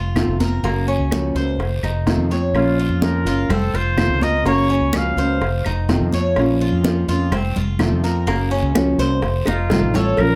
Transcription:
Already playing: fretless electric bass F1, cuban tres F4
0.15 nylon-string guitar C3 D#3 A3 C4 F4, high bongo, low bongo, high conga, short guiro, claves
0.27 fretless electric bass F1
0.39 nylon-string guitar A3 C4 F4, cuban tres A#4, high conga, short guiro
0.63 fretless electric bass F#1, nylon-string guitar C#3 A#3 C#4 F#4, cuban tres A#3, high bongo, high conga, long guiro
0.88 cuban tres C#4, high bongo, high conga
0.99 fretless electric bass C#2
1.11 nylon-string guitar C#3 F3 A#3 C#4 F#4, high bongo, high conga, short guiro, claves
1.35 fretless electric bass C#2, nylon-string guitar A#3 C#4 F#4, cuban tres C5, high conga, short guiro
1.58 fretless electric bass F1, muted nylon-string guitar stroke, high bongo, high conga, long guiro
1.83 fretless electric bass F1, cuban tres D#4, high bongo, high conga, claves
2.06 nylon-string guitar C3 D#3 A3 C4 F4, high bongo, low bongo, high conga, short guiro
2.18 fretless electric bass F2
2.30 nylon-string guitar A3 C4 F4, cuban tres C#5, high bongo, short guiro
2.53 fretless electric bass A#1, nylon-string guitar F3 A#3 C#4 F4, trumpet F4, high bongo, high conga, long guiro, claves
2.79 cuban tres F4, high conga
2.90 fretless electric bass F2
3.02 nylon-string guitar F3 A#3 C#4 F4, trumpet A#4, high bongo, high conga, short guiro
3.25 fretless electric bass F#1, nylon-string guitar A#3 C#4 F4, cuban tres F4, high conga, short guiro
3.49 fretless electric bass F1, cuban tres C4, trumpet A4, muted nylon-string guitar stroke, high bongo, high conga, low conga, long guiro, claves
3.74 fretless electric bass F1, cuban tres F4, trumpet C5, high conga
3.97 nylon-string guitar C3 D#3 A3 C4 F4, high bongo, low bongo, high conga, short guiro, claves
4.09 fretless electric bass C#2
4.20 nylon-string guitar A3 C4 F4, cuban tres A#4, trumpet D#5, high conga, short guiro
4.44 fretless electric bass F#1, nylon-string guitar C#3 A#3 C#4 F#4, cuban tres A#3, trumpet C#5, high bongo, high conga, long guiro
4.70 cuban tres C#4, high bongo, high conga
4.81 fretless electric bass C#2
4.92 nylon-string guitar C#3 F3 A#3 C#4 F#4, high bongo, high conga, short guiro, claves
4.97 trumpet F5
5.17 fretless electric bass C#2, nylon-string guitar A#3 C#4 F#4, cuban tres C5, high conga, short guiro
5.41 fretless electric bass F1, muted nylon-string guitar stroke, high bongo, high conga, long guiro
5.65 fretless electric bass F1, cuban tres D#4, high bongo, high conga, claves
5.88 nylon-string guitar C3 D#3 A3 C4 F4, high bongo, low bongo, high conga, short guiro
6.01 fretless electric bass F2
6.12 nylon-string guitar A3 C4 F4, cuban tres C#5, high bongo, high conga, short guiro
6.36 fretless electric bass A#1, nylon-string guitar F3 A#3 C#4 F4, high bongo, high conga, long guiro, claves
6.61 cuban tres F4, high conga
6.72 fretless electric bass F2
6.84 nylon-string guitar F3 A#3 C#4 F4, high bongo, high conga, short guiro
7.08 fretless electric bass F2, nylon-string guitar A#3 C#4 F4, cuban tres F4, high conga, short guiro
7.32 fretless electric bass F1, cuban tres C4, muted nylon-string guitar stroke, high bongo, high conga, low conga, long guiro, claves
7.56 fretless electric bass F1, cuban tres F4, high conga, low conga
7.79 nylon-string guitar C3 D#3 A3 C4 F4, high bongo, low bongo, high conga, short guiro, claves
7.92 fretless electric bass F2
8.03 nylon-string guitar A3 C4 F4, cuban tres A#4, short guiro
8.27 fretless electric bass F#1, nylon-string guitar C#3 A#3 C#4 F#4, cuban tres A#3, high bongo, high conga, long guiro
8.51 cuban tres C#4, high bongo, high conga
8.62 fretless electric bass C#2
8.74 nylon-string guitar C#3 F3 A#3 C#4 F#4, high bongo, high conga, short guiro, claves
8.98 fretless electric bass C2, nylon-string guitar A#3 C#4 F#4, cuban tres C5, high conga, short guiro
9.21 fretless electric bass F1, muted nylon-string guitar stroke, high bongo, high conga, long guiro
9.46 fretless electric bass F1, cuban tres D#4, trumpet F4, high bongo, high conga, claves
9.70 nylon-string guitar C3 D#3 A3 C4 F4, high bongo, low conga, short guiro
9.82 fretless electric bass A1
9.94 nylon-string guitar A3 C4 F4, trumpet A4, cuban tres C#5, low bongo, low conga, short guiro
10.17 fretless electric bass A#1, nylon-string guitar F3 A#3 C#4 F4, trumpet A#4, cowbell, high conga, long guiro, claves

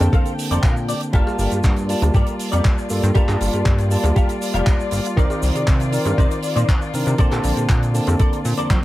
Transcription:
Already playing: tine electric piano D3 A#3 C4 A5, string section G4 G5
0.00 analog synth bass F2, muted clean electric guitar stroke, closed hi-hat, cowbell, shaker
0.13 clean electric guitar A4 A#4 C5 F5, kick, closed hi-hat, shaker
0.26 closed hi-hat, shaker
0.39 open hi-hat, shaker
0.51 analog synth bass F1, clean electric guitar A4 A#4 C5 D5, closed hi-hat, shaker
0.63 analog synth bass A#2, clean electric guitar F5, kick, clap, closed hi-hat, shaker
0.76 muted clean electric guitar stroke, shaker
0.89 clean electric guitar D5, open hi-hat, shaker
1.01 muted clean electric guitar stroke, closed hi-hat, shaker
1.13 analog synth bass G1, tine electric piano G3 A#3 F4 A5, string section F4 D5, clean electric guitar G4 A4 A#4 F5, kick, closed hi-hat, shaker
1.27 cowbell, shaker
1.39 analog synth bass G1, open hi-hat, shaker
1.52 analog synth bass G2, closed hi-hat, cowbell, shaker
1.64 analog synth bass G2, kick, clap, closed hi-hat, shaker
1.76 closed hi-hat, shaker
1.88 tine electric piano G3 A#3 F4 A5, open hi-hat, shaker
2.02 analog synth bass D2, muted clean electric guitar stroke, closed hi-hat, cowbell, shaker
2.14 analog synth bass G2, clean electric guitar G4 A4 A#4 D5, kick, closed hi-hat, shaker
2.27 closed hi-hat, shaker
2.39 open hi-hat, shaker
2.52 analog synth bass F2, clean electric guitar G4 A4 A#4 D5, closed hi-hat, shaker
2.65 kick, clap, closed hi-hat, shaker
2.77 muted clean electric guitar stroke, shaker
2.90 analog synth bass G2, tine electric piano G3 A#3 F4 A4, open hi-hat, shaker
3.03 analog synth bass G2, muted clean electric guitar stroke, closed hi-hat, shaker
3.15 analog synth bass G2, tine electric piano G3 A#3 F4 A5, clean electric guitar G4 A4 A#4 F5, kick, closed hi-hat, shaker
3.29 analog synth bass G2, clap, cowbell, shaker
3.41 analog synth bass G1, open hi-hat, shaker
3.53 analog synth bass G2, closed hi-hat, cowbell, shaker
3.66 analog synth bass G2, kick, clap, closed hi-hat, shaker
3.78 closed hi-hat, shaker
3.90 tine electric piano G3 A#3 F4 A5, open hi-hat, shaker
4.04 analog synth bass D2, muted clean electric guitar stroke, closed hi-hat, cowbell, shaker
4.16 clean electric guitar G4 A4 A#4 F5, kick, closed hi-hat, shaker
4.29 closed hi-hat, shaker
4.42 open hi-hat, shaker
4.54 analog synth bass F1, clean electric guitar G4 A4 A#4 F5, closed hi-hat, shaker
4.67 kick, clap, closed hi-hat, shaker
4.79 muted clean electric guitar stroke, shaker
4.91 analog synth bass G1, open hi-hat, shaker
5.05 muted clean electric guitar stroke, closed hi-hat, shaker
5.16 analog synth bass C2, tine electric piano D#3 C4 A#4 D5, clean electric guitar D#4 A#4 C5 D5, kick, closed hi-hat, shaker
5.30 cowbell, shaker
5.43 analog synth bass C2, open hi-hat, shaker
5.55 analog synth bass C3, closed hi-hat, cowbell, shaker
5.67 analog synth bass C3, kick, clap, closed hi-hat, shaker
5.80 closed hi-hat, shaker
5.92 tine electric piano D#3 C4 A#4 D5, open hi-hat, shaker
6.05 analog synth bass G2, muted clean electric guitar stroke, closed hi-hat, cowbell, shaker
6.18 analog synth bass C3, clean electric guitar D#4 A#4 C5 D5, kick, closed hi-hat, shaker
6.31 closed hi-hat, shaker
6.43 open hi-hat, shaker
6.56 analog synth bass A#2, clean electric guitar D#4 A#4 C5 D5, closed hi-hat, shaker
6.69 kick, clap, closed hi-hat, shaker
6.81 muted clean electric guitar stroke, shaker
6.93 analog synth bass C3, tine electric piano D#3 C4 D4 A#4, open hi-hat, shaker
7.06 analog synth bass C3, muted clean electric guitar stroke, closed hi-hat, shaker
7.18 analog synth bass A#2, tine electric piano D3 A#3 C4 A5, clean electric guitar A4 A#4 C5 D5, kick, closed hi-hat, shaker
7.31 analog synth bass A#2, clap, closed hi-hat, cowbell, shaker
7.44 analog synth bass A#1, open hi-hat, shaker
7.57 analog synth bass A#2, closed hi-hat, cowbell, shaker
7.69 analog synth bass A#2, kick, clap, closed hi-hat, shaker
7.83 closed hi-hat, shaker
7.94 tine electric piano D3 A#3 C4 A5, open hi-hat, shaker
8.07 analog synth bass F2, muted clean electric guitar stroke, closed hi-hat, cowbell, shaker
8.19 clean electric guitar A4 A#4 C5 D5, kick, closed hi-hat, shaker
8.33 closed hi-hat, shaker
8.45 analog synth bass A#2, open hi-hat, shaker
8.57 analog synth bass F2, clean electric guitar A4 A#4 C5 D5, closed hi-hat, shaker
8.70 analog synth bass F2, kick, clap, closed hi-hat, high tom, shaker

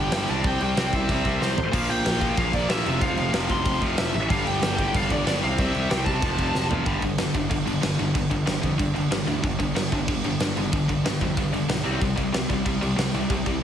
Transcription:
Already playing: distorted electric guitar G2 D3 G3, lead electric guitar G5
0.12 picked electric bass G1, distorted electric guitar G2 D3 G3, lead electric guitar G5, snare, crash
0.27 picked electric bass C2, distorted electric guitar C3 G3 C4, lead electric guitar A5, crash
0.44 picked electric bass C2, lead electric guitar G5, kick, crash
0.60 picked electric bass C2, lead electric guitar G5, crash
0.75 picked electric bass C2, distorted electric guitar C3 G3 C4, lead electric guitar G5, snare, crash
0.93 picked electric bass C2, lead electric guitar E5, kick, crash
1.09 picked electric bass C2, kick, crash
1.24 picked electric bass C2, distorted electric guitar C3 G3 C4, kick, crash
1.41 picked electric bass C2, lead electric guitar C5, snare
1.56 picked electric bass A1, floor tom
1.72 picked electric bass A#1, distorted electric guitar A#2 F3 A#3, lead electric guitar F5, kick, crash
1.89 picked electric bass A#1, lead electric guitar G5, crash
2.04 picked electric bass A#1, snare, crash
2.21 distorted electric guitar A#2 F3 A#3, kick, crash
2.37 picked electric bass A#1, lead electric guitar F5, kick, crash
2.53 picked electric bass A#1, lead electric guitar D5, kick, crash
2.68 picked electric bass A#1, distorted electric guitar A#2 F3 A#3, lead electric guitar E5, snare, crash
2.85 picked electric bass F1, distorted electric guitar F2 C3 F3, crash
3.01 picked electric bass F1, lead electric guitar F5, kick, crash
3.17 picked electric bass F1, crash
3.31 picked electric bass F1, distorted electric guitar F2 C3 F3, snare, crash
3.50 picked electric bass F1, lead electric guitar C6, kick, crash
3.66 picked electric bass F1, kick, crash
3.80 picked electric bass F1, distorted electric guitar F2 C3 F3, kick, crash
3.98 picked electric bass F1, lead electric guitar E5, snare, crash
4.14 picked electric bass A1, crash
4.29 picked electric bass G1, distorted electric guitar G2 D3 G3, lead electric guitar F5, kick, crash
4.45 picked electric bass G1, lead electric guitar G5, crash
4.62 picked electric bass G1, snare, crash
4.76 distorted electric guitar G2 D3 G3, kick, crash
4.94 picked electric bass G1, lead electric guitar F5, kick, crash
5.10 picked electric bass G1, lead electric guitar D5, kick, crash
5.25 picked electric bass G1, distorted electric guitar G2 D3 G3, lead electric guitar D5, snare, crash
5.40 picked electric bass C2, distorted electric guitar C3 G3 C4, lead electric guitar F5, crash
5.58 picked electric bass C2, lead electric guitar E5, kick, crash
5.74 picked electric bass C2, crash
5.89 picked electric bass C2, distorted electric guitar C3 G3 C4, lead electric guitar G5, snare, crash
6.05 picked electric bass C2, lead electric guitar A5, kick, crash
6.21 picked electric bass F1, distorted electric guitar F2 C3 F3, kick, crash
6.38 picked electric bass F1, kick, crash
6.55 picked electric bass F1, snare
6.70 picked electric bass F1, distorted electric guitar F2 C3 F3, floor tom
6.86 picked electric bass G1, distorted electric guitar G2 D3 G3, kick, crash
7.02 picked electric bass G1, distorted electric guitar G2 D3, kick, crash
7.18 picked electric bass G1, distorted electric guitar G2 D3, snare, crash
7.34 picked electric bass G1, distorted electric guitar G2 D3, kick, crash
7.50 picked electric bass G1, distorted electric guitar G2 D3, kick, crash
7.66 picked electric bass G1, distorted electric guitar G2 D3, crash
7.82 picked electric bass G1, distorted electric guitar G2 D3, snare, crash
7.99 picked electric bass G1, distorted electric guitar G2 D3, crash
8.15 picked electric bass G1, distorted electric guitar G2 D3, kick, crash
8.31 picked electric bass G1, distorted electric guitar G2 D3, kick, crash
8.46 picked electric bass G1, distorted electric guitar G2 D3, snare, crash
8.62 picked electric bass F2, distorted electric guitar G2 D3, kick, crash
8.78 distorted electric guitar G2 D3, picked electric bass G2, kick, crash
8.94 picked electric bass G1, distorted electric guitar G2 D3, crash
9.11 picked electric bass G1, distorted electric guitar G2 D3, snare, crash
9.27 picked electric bass D2, distorted electric guitar G2 D3, crash
9.42 picked electric bass G1, distorted electric guitar G2 D3, kick, crash
9.59 picked electric bass G1, distorted electric guitar G2 D3, kick, crash
9.75 picked electric bass G1, distorted electric guitar G2 D3, snare, crash
9.92 picked electric bass G1, distorted electric guitar G2 D3, kick, crash
10.08 picked electric bass G1, distorted electric guitar G2 D3, kick, crash
10.24 picked electric bass G1, distorted electric guitar G2 D3, crash
10.40 picked electric bass G1, distorted electric guitar G2 D3, snare, crash
10.56 picked electric bass G1, distorted electric guitar G2 D3, crash
10.72 picked electric bass G1, distorted electric guitar G2 D3, kick, crash
10.88 picked electric bass G1, distorted electric guitar G2 D3, kick, crash
11.04 picked electric bass G1, distorted electric guitar G2 D3, snare, crash
11.21 picked electric bass F2, distorted electric guitar G2 D3, kick, crash
11.37 distorted electric guitar G2 D3, picked electric bass G2, kick, crash
11.53 picked electric bass G1, distorted electric guitar G2 D3, crash
11.69 picked electric bass B1, distorted electric guitar G2 D3, snare, crash
11.84 picked electric bass C2, distorted electric guitar C3 G3 C4, crash
12.01 picked electric bass C2, distorted electric guitar C3 G3, kick, crash
12.16 picked electric bass C2, distorted electric guitar C3 G3, kick, crash
12.32 picked electric bass C2, distorted electric guitar C3 G3, snare, crash
12.49 picked electric bass C2, distorted electric guitar C3 G3, kick, crash
12.65 picked electric bass C2, distorted electric guitar C3 G3, kick, crash
12.81 picked electric bass C2, distorted electric guitar C3 G3, crash
12.96 picked electric bass C2, distorted electric guitar C3 G3, snare, crash
13.14 picked electric bass C2, distorted electric guitar C3 G3, crash
13.30 picked electric bass C2, distorted electric guitar C3 G3, kick, crash
13.46 picked electric bass C2, distorted electric guitar C3 G3, kick, crash

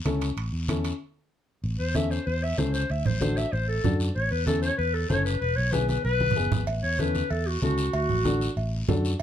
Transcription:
0.05 fingered electric bass C#2, upright piano C#4 E4 A4, high conga, high timbale, short guiro
0.21 high timbale, short guiro
0.37 fingered electric bass A1, high timbale, long guiro
0.53 fingered electric bass E2
0.68 upright piano C#4 E4 A4, high conga, high timbale, short guiro
0.84 high timbale, short guiro
1.64 fingered electric bass A1, long guiro
1.79 fingered electric bass E2, clarinet C5
1.95 upright piano C#4 E4 A4, clarinet E5, high conga, short guiro
2.11 clarinet C5, short guiro
2.26 fingered electric bass E2, clarinet C5, long guiro
2.43 clarinet E5
2.58 fingered electric bass C#2, upright piano C#4 E4 A4, clarinet C5, high conga, short guiro
2.74 clarinet C5, short guiro
2.90 fingered electric bass D2, clarinet E5, long guiro
3.06 fingered electric bass A1, clarinet C5, low conga
3.20 upright piano D4 F#4 A4, clarinet C5, high conga, short guiro
3.37 clarinet E5, short guiro
3.52 fingered electric bass A1, clarinet C5, long guiro
3.68 clarinet A4
3.84 fingered electric bass F#2, upright piano D4 F#4 A4, high conga, low conga, short guiro
4.00 short guiro
4.15 fingered electric bass A1, clarinet C#5, long guiro
4.31 fingered electric bass E2, clarinet B4
4.46 upright piano C#4 E4 A4, clarinet A4, high conga, short guiro
4.62 clarinet C#5, short guiro
4.78 fingered electric bass E2, clarinet B4, long guiro
4.94 clarinet A4
5.09 fingered electric bass F#1, upright piano C#4 E4 A4, clarinet C#5, high conga, short guiro
5.25 clarinet B4, short guiro
5.40 fingered electric bass E1, clarinet B4, long guiro
5.56 fingered electric bass B1, clarinet C#5
5.71 upright piano B3 E4 G#4, clarinet B4, high conga, short guiro
5.88 clarinet B4, high conga, short guiro
6.04 fingered electric bass B1, clarinet B4, long guiro
6.21 high conga
6.31 low conga
6.36 fingered electric bass F#1, upright piano B3 E4 G#4, short guiro
6.52 fingered electric bass G#1, low conga, short guiro
6.67 fingered electric bass A1, cowbell, long guiro
6.83 fingered electric bass E2, clarinet C#5
6.99 upright piano C#4 E4 A4, clarinet B4, high conga, short guiro
7.15 high conga, short guiro
7.30 fingered electric bass E2, clarinet A4, cowbell, long guiro
7.47 clarinet F#4
7.62 fingered electric bass C#2, upright piano C#4 E4 A4, clarinet F#4, high conga, short guiro
7.78 short guiro
7.93 fingered electric bass D2, clarinet F#4, cowbell, long guiro
8.09 fingered electric bass A1, low conga
8.25 upright piano D4 F#4 A4, high conga, short guiro
8.41 short guiro
8.57 fingered electric bass A1, cowbell, long guiro
8.88 fingered electric bass F#2, upright piano D4 F#4 A4, high conga, low conga, low timbale, short guiro
9.05 short guiro

